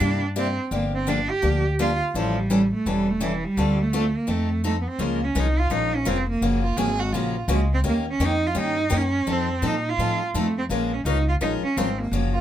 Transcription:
Already playing: cello D4
0.00 upright bass G2, steel-string acoustic guitar C3 G3 A#3 E4 G4
0.36 steel-string acoustic guitar C3 G3 A#3 E4 G4, cello C4
0.71 upright bass G1, steel-string acoustic guitar D3 F3 A#3 D4 G4, cello A#3
0.95 cello C4
1.07 steel-string acoustic guitar D3 F3 A#3 D4 G4, cello D4
1.30 cello G4
1.42 upright bass D2, steel-string acoustic guitar D3 F3 A#3 D4 G4
1.79 steel-string acoustic guitar D3 F3 A#3 D4 G4, cello F4
2.14 upright bass A1, steel-string acoustic guitar E3 G3 C#4 E4 A4, cello F3
2.39 cello G3
2.50 steel-string acoustic guitar E3 G3 C#4 E4 A4
2.74 cello A3
2.86 upright bass E1, steel-string acoustic guitar E3 G3 C#4 E4 A4, cello G3
3.10 cello A3
3.20 steel-string acoustic guitar E3 G3 C#4 E4 A4, cello E3
3.44 cello G3
3.57 upright bass D2, steel-string acoustic guitar D3 A3 C4 F4 A4
3.83 cello A3
3.93 steel-string acoustic guitar D3 A3 C4 F4 A4
4.17 cello A#3
4.27 upright bass F2, steel-string acoustic guitar F3 C4 D#4 A4, cello A3
4.64 steel-string acoustic guitar F3 C4 D#4 A4, cello A3
4.82 cello B3
4.88 cello C4
4.99 upright bass C#2, steel-string acoustic guitar F3 G#3 C#4 F4 A#4, cello A#3
5.25 cello C#4
5.35 upright bass C2, steel-string acoustic guitar F3 G#3 C#4 F4 A#4
5.40 cello D#4
5.59 cello F4
5.70 upright bass A#1, steel-string acoustic guitar F3 G#3 C#4 F4 A#4, cello D#4
5.95 cello C#4
6.05 upright bass F1, steel-string acoustic guitar F3 G#3 C#4 F4 A#4, cello C4
6.30 cello A#3
6.41 upright bass F#1, steel-string acoustic guitar C#3 F3 A#3 C#4 F#4
6.62 violin F4
6.77 upright bass G#1, steel-string acoustic guitar C#3 F3 A#3 C#4 F#4, violin G#4
7.00 violin F#4
7.13 upright bass A#1, steel-string acoustic guitar C#3 F3 A#3 C#4 F#4, violin F4
7.48 upright bass C#2, steel-string acoustic guitar C#3 F3 A#3 C#4 F#4
7.53 cello G#3
7.74 cello C4
7.84 upright bass D#2, steel-string acoustic guitar D#3 A#3 C#4 G4 A#4
7.89 cello A#3
8.10 cello C#4
8.19 upright bass F2, steel-string acoustic guitar D#3 A#3 C#4 G4 A#4
8.25 cello D#4
8.47 cello F4
8.55 upright bass G2, steel-string acoustic guitar D#3 A#3 C#4 G4 A#4
8.60 cello D#4
8.90 upright bass F#2, steel-string acoustic guitar D#3 A#3 C#4 G4 A#4
8.97 cello C#4
9.27 upright bass F2, steel-string acoustic guitar F3 C4 D#4 A4
9.32 cello C4
9.62 upright bass A#2, steel-string acoustic guitar F3 C4 D#4 A4
9.67 cello D#4
9.89 cello F4
9.98 upright bass A2, steel-string acoustic guitar F3 C4 D#4 A4
10.34 upright bass F2, steel-string acoustic guitar F3 C4 D#4 A4, cello A3
10.59 cello C4
10.69 upright bass A#1, steel-string acoustic guitar F3 G#3 C#4 F4 A#4, cello A#3
10.94 cello C#4
11.05 upright bass C#2, steel-string acoustic guitar F3 G#3 C#4 F4 A#4, cello D#4
11.29 cello F4
11.41 upright bass A#1, steel-string acoustic guitar F3 G#3 C#4 F4 A#4, cello D#4
11.63 cello C#4, muted upright bass stroke
11.77 upright bass G#1, steel-string acoustic guitar F3 G#3 C#4 F4 A#4, cello C4
12.00 cello A#3
12.11 upright bass F#1, steel-string acoustic guitar C#3 F3 A#3 C#4 F#4
12.33 violin F4

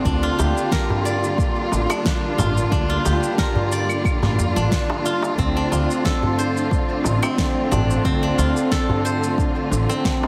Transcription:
Already playing: string section D3 F4, guzheng C4 F4 A4 C5, synth texture D4 D5
0.05 upright bass D2, string section G3 A#3, guzheng D4, kick, shaker
0.23 guzheng F4
0.39 upright bass D2, guzheng G4, darbuka ka, darbuka tek, shaker
0.58 shaker
0.72 guzheng A#4, kick, snare, shaker
0.90 darbuka dum
1.05 guzheng D5, shaker
1.24 shaker
1.38 kick, shaker
1.72 upright bass A1, darbuka tek, shaker
1.90 guzheng D4, darbuka ka, darbuka tek, claves, shaker
2.05 kick, snare, shaker
2.38 upright bass A1, guzheng F4, darbuka tek, darbuka dum, shaker
2.57 shaker
2.72 upright bass D2, guzheng D4, kick, shaker
2.90 guzheng F4
3.05 upright bass D2, guzheng G4, darbuka ka, darbuka tek, shaker
3.24 shaker
3.38 guzheng A#4, kick, snare, shaker
3.55 darbuka dum
3.72 guzheng D5, shaker
3.89 claves, shaker
4.05 kick, claves, shaker
4.23 upright bass A1, snare, darbuka dum
4.39 upright bass F2, shaker
4.56 upright bass A1, guzheng D4, shaker
4.71 kick, snare, shaker
4.90 darbuka tek
5.05 guzheng F4, darbuka ka, shaker
5.22 darbuka tek, shaker
5.38 upright bass D2, string section D3 A3 C4, guzheng C4, kick, shaker
5.57 guzheng D4
5.71 upright bass D2, guzheng F4, darbuka ka, darbuka tek, shaker
5.91 shaker
6.05 guzheng A4, kick, snare, shaker
6.23 darbuka dum
6.39 guzheng C5, shaker
6.57 shaker
6.71 kick, shaker
7.04 upright bass A1, darbuka tek, shaker
7.22 guzheng C4, darbuka ka, darbuka tek, claves, shaker
7.38 kick, snare, shaker
7.72 upright bass A1, guzheng D4, darbuka tek, darbuka dum, shaker
7.91 shaker
8.05 upright bass D2, guzheng C4, kick, shaker
8.23 guzheng D4
8.38 upright bass D2, guzheng F4, darbuka ka, darbuka tek, shaker
8.57 shaker
8.71 guzheng A4, kick, snare, shaker
8.89 darbuka dum
9.05 guzheng C5, shaker
9.24 shaker
9.38 kick, shaker
9.71 upright bass A1, shaker
9.89 guzheng C4, shaker
10.05 kick, snare, shaker
10.23 darbuka tek

